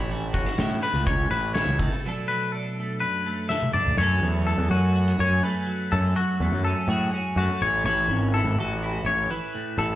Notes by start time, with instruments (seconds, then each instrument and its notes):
Already playing: picked electric bass A1, clean electric guitar A2 C#4 E4 F#4
0.09 clean electric guitar E3, closed hi-hat
0.33 clean electric guitar C#4 F#4, kick, closed hi-hat
0.46 clean electric guitar E4, snare
0.58 picked electric bass A2, clean electric guitar C#4, snare, closed hi-hat
0.82 clean electric guitar A2 B4, closed hi-hat
0.94 picked electric bass C#2, closed hi-hat
1.07 clean electric guitar C#4 C#5, kick, closed hi-hat
1.31 picked electric bass A1, clean electric guitar F#4 B4, closed hi-hat
1.54 clean electric guitar C#5, snare, closed hi-hat
1.59 clean electric guitar E4
1.66 picked electric bass C#2
1.79 clean electric guitar A2 A4, kick, closed hi-hat
1.92 closed hi-hat
2.06 clean electric guitar B2 F#3 A3 D4 A4
2.28 clean electric guitar F#3 B4
2.52 clean electric guitar D4 A4
2.80 clean electric guitar A3
3.00 clean electric guitar F#2 B4
3.26 clean electric guitar A3
3.49 clean electric guitar A4 E5, snare
3.62 mid tom
3.73 clean electric guitar D4 D5, mid tom
3.86 floor tom
3.97 picked electric bass F#2, clean electric guitar F#2 F#3 A3 C#5
4.01 clean electric guitar C#4 A4
4.22 picked electric bass E2, clean electric guitar F#3
4.47 clean electric guitar A3 A4
4.58 picked electric bass E2
4.71 picked electric bass F#2, clean electric guitar C#4 F#4
4.96 clean electric guitar F#4
5.08 clean electric guitar G#4
5.19 picked electric bass F#2, clean electric guitar C#4 C#5
5.43 clean electric guitar A3 B4
5.67 clean electric guitar F#3
5.91 clean electric guitar F#2 A4, picked electric bass F#2
6.16 clean electric guitar F#3 F#4
6.40 picked electric bass E2, clean electric guitar A3
6.52 picked electric bass F#2
6.64 clean electric guitar C#4 A4
6.88 picked electric bass A2, clean electric guitar F#4 G#4
7.14 clean electric guitar C#4
7.36 picked electric bass F#2, clean electric guitar A3 F#4
7.62 picked electric bass A1, clean electric guitar C#5
7.85 picked electric bass A1, clean electric guitar E3 C#5
8.08 picked electric bass G#1, clean electric guitar C#4
8.34 clean electric guitar E4 A4
8.44 picked electric bass G#1
8.56 picked electric bass A1, clean electric guitar F#4
8.60 clean electric guitar A4
8.83 clean electric guitar E4
9.05 picked electric bass A1, clean electric guitar C#4 C#5
9.30 clean electric guitar E3 B4
9.55 clean electric guitar A2
9.78 picked electric bass A1, clean electric guitar E3 A4